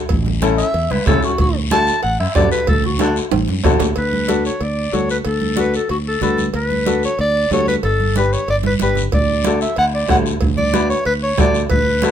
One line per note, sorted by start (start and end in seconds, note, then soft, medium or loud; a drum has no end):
0.09 0.62 A1 loud
0.09 bombo low medium
0.09 cowbell loud
0.09 high conga soft
0.09 long guiro medium
0.26 high conga medium
0.26 low conga medium
0.42 0.65 C#4 medium
0.42 0.65 E4 medium
0.42 0.65 A4 loud
0.42 bombo rim medium
0.42 high conga medium
0.42 short guiro medium
0.58 0.93 E5 loud
0.58 short guiro medium
0.74 0.87 E2 medium
0.74 cowbell medium
0.74 high conga soft
0.74 long guiro medium
0.91 0.97 C#2 medium
0.91 1.06 B4 medium
0.91 bombo rim medium
0.91 high conga medium
1.06 1.20 C#2 medium
1.06 1.30 C#4 medium
1.06 1.30 E4 medium
1.06 1.26 A4 medium
1.06 1.30 A4 medium
1.06 bombo low medium
1.06 bombo rim medium
1.06 high conga medium
1.06 low conga medium
1.06 low timbale medium
1.06 short guiro medium
1.23 1.39 F#4 loud
1.23 short guiro medium
1.38 1.91 D2 loud
1.38 1.55 F#4 medium
1.38 bombo low medium
1.38 cowbell loud
1.38 high conga soft
1.38 long guiro medium
1.70 1.94 D4 medium
1.70 1.94 F#4 medium
1.70 1.94 A4 medium
1.70 2.02 A5 loud
1.70 bombo rim medium
1.70 high conga medium
1.70 short guiro medium
1.87 short guiro medium
2.03 2.17 A1 medium
2.03 2.19 F#5 medium
2.03 cowbell medium
2.03 high conga soft
2.03 long guiro medium
2.20 2.26 F#2 medium
2.20 2.35 E5 medium
2.20 bombo rim medium
2.35 2.49 F#2 loud
2.35 2.59 D4 medium
2.35 2.59 F#4 medium
2.35 2.59 A4 medium
2.35 2.51 D5 loud
2.35 bombo low medium
2.35 bombo rim medium
2.35 high conga medium
2.35 low timbale medium
2.35 short guiro medium
2.52 2.67 B4 loud
2.52 short guiro medium
2.67 3.20 D2 loud
2.67 2.84 A4 medium
2.67 bombo low medium
2.67 cowbell loud
2.67 high conga soft
2.67 long guiro medium
2.84 3.00 F#4 medium
2.84 low conga medium
2.99 3.23 D4 medium
2.99 3.16 D4 loud
2.99 3.23 F#4 medium
2.99 3.23 A4 medium
2.99 bombo rim medium
2.99 high conga medium
2.99 high timbale medium
2.99 short guiro medium
3.16 short guiro medium
3.31 3.45 A1 loud
3.31 cowbell medium
3.31 high conga medium
3.31 high timbale medium
3.31 long guiro medium
3.48 3.63 F#2 medium
3.48 high conga medium
3.64 3.79 E2 medium
3.64 3.87 D4 medium
3.64 3.87 F#4 medium
3.64 3.87 A4 loud
3.64 bombo low medium
3.64 bombo rim medium
3.64 low conga medium
3.64 low timbale medium
3.64 short guiro medium
3.80 3.95 D2 medium
3.80 low conga medium
3.80 low timbale medium
3.80 short guiro medium
3.96 4.49 D2 loud
3.96 4.42 B4 medium
3.96 cowbell loud
3.96 high conga soft
3.96 long guiro medium
4.13 high conga medium
4.28 4.51 D4 medium
4.28 4.51 F#4 medium
4.28 4.51 A4 medium
4.28 high conga loud
4.28 short guiro medium
4.45 4.64 C#5 medium
4.45 short guiro medium
4.61 4.87 D2 medium
4.61 4.96 D5 medium
4.61 cowbell medium
4.61 high conga soft
4.61 long guiro medium
4.92 5.19 D2 medium
4.92 5.15 D4 medium
4.92 5.16 F#4 medium
4.92 5.16 A4 medium
4.92 5.10 C#5 medium
4.92 high conga medium
4.92 short guiro medium
5.09 5.18 B4 medium
5.09 short guiro medium
5.25 5.77 D2 loud
5.25 5.56 A4 medium
5.25 cowbell loud
5.25 high conga soft
5.25 long guiro medium
5.41 high conga medium
5.56 5.80 D4 medium
5.56 5.80 F#4 medium
5.56 5.80 A4 medium
5.56 5.74 B4 medium
5.56 high conga loud
5.56 short guiro medium
5.74 5.90 A4 medium
5.74 short guiro medium
5.89 6.16 D2 medium
5.89 5.98 F#4 medium
5.89 cowbell medium
5.89 high conga soft
5.89 long guiro medium
6.08 6.22 A4 medium
6.21 6.48 D2 loud
6.21 6.45 D4 medium
6.21 6.45 F#4 medium
6.21 6.45 A4 loud
6.21 6.45 B4 medium
6.21 high conga medium
6.21 low conga medium
6.21 short guiro medium
6.38 high conga medium
6.38 short guiro medium
6.54 7.06 D2 loud
6.54 7.00 B4 medium
6.54 cowbell loud
6.54 high conga soft
6.54 long guiro medium
6.71 high conga medium
6.86 7.09 D4 medium
6.86 7.09 F#4 medium
6.86 7.09 A4 medium
6.86 high conga medium
6.86 short guiro medium
7.03 7.19 C#5 medium
7.03 short guiro medium
7.19 7.45 D2 medium
7.19 7.50 D5 loud
7.19 cowbell medium
7.19 high conga soft
7.19 long guiro medium
7.51 7.77 D2 medium
7.51 7.74 D4 medium
7.51 7.74 F#4 medium
7.51 7.75 A4 medium
7.51 7.67 C#5 loud
7.51 high conga medium
7.51 low timbale medium
7.51 short guiro medium
7.67 7.75 B4 medium
7.67 high conga medium
7.67 short guiro medium
7.83 8.35 G1 loud
7.83 8.14 A4 medium
7.83 cowbell loud
7.83 high conga soft
7.83 long guiro medium
8.00 high conga medium
8.16 8.39 D4 medium
8.16 8.39 G4 medium
8.16 8.34 B4 loud
8.16 8.39 B4 medium
8.16 high conga loud
8.16 short guiro medium
8.33 8.48 C#5 medium
8.33 short guiro medium
8.48 8.74 G1 medium
8.48 8.57 D5 loud
8.48 cowbell medium
8.48 high conga soft
8.48 long guiro medium
8.63 8.74 B4 medium
8.63 high conga loud
8.80 9.07 G1 medium
8.80 9.03 D4 medium
8.80 9.04 G4 medium
8.80 9.04 B4 medium
8.80 9.04 B4 loud
8.80 high conga medium
8.80 short guiro medium
8.95 low conga medium
8.95 short guiro medium
9.12 9.64 D2 loud
9.12 9.58 D5 loud
9.12 bombo low medium
9.12 cowbell loud
9.12 high conga soft
9.12 long guiro medium
9.44 9.68 D4 medium
9.44 9.68 F#4 medium
9.44 9.68 A4 medium
9.44 bombo rim medium
9.44 high conga medium
9.44 short guiro medium
9.61 9.76 E5 medium
9.61 short guiro medium
9.76 10.03 D2 loud
9.76 9.85 F#5 loud
9.76 bombo rim medium
9.76 cowbell medium
9.76 high conga soft
9.76 long guiro medium
9.95 10.09 D5 medium
10.08 10.35 D2 loud
10.08 10.31 D4 medium
10.08 10.32 F#4 medium
10.08 10.32 A4 medium
10.08 10.17 F#5 loud
10.08 bombo low medium
10.08 bombo rim medium
10.08 high conga medium
10.08 low timbale medium
10.08 short guiro medium
10.26 short guiro medium
10.41 10.93 D2 loud
10.41 bombo low medium
10.41 cowbell loud
10.41 high conga soft
10.41 long guiro medium
10.57 10.87 D5 loud
10.57 high conga medium
10.57 low conga medium
10.73 10.96 D4 medium
10.73 10.96 F#4 medium
10.73 10.96 B4 medium
10.73 bombo rim medium
10.73 high conga loud
10.73 short guiro medium
10.89 11.04 C#5 medium
10.89 short guiro medium
11.05 11.32 D2 medium
11.05 11.13 B4 loud
11.05 cowbell medium
11.05 high conga soft
11.05 long guiro medium
11.23 11.37 C#5 loud
11.38 11.64 D2 medium
11.38 11.61 D4 medium
11.38 11.61 F#4 medium
11.38 11.61 A4 medium
11.38 11.62 D5 loud
11.38 bombo low medium
11.38 bombo rim medium
11.38 high conga medium
11.38 low conga medium
11.38 low timbale medium
11.38 short guiro medium
11.54 short guiro medium
11.70 12.11 D2 loud
11.70 12.11 B4 loud
11.70 bombo low medium
11.70 cowbell loud
11.70 high conga soft
11.70 long guiro medium
12.02 12.11 D4 medium
12.02 12.11 F#4 medium
12.02 12.11 A4 medium
12.02 bombo rim medium
12.02 high conga loud
12.02 short guiro medium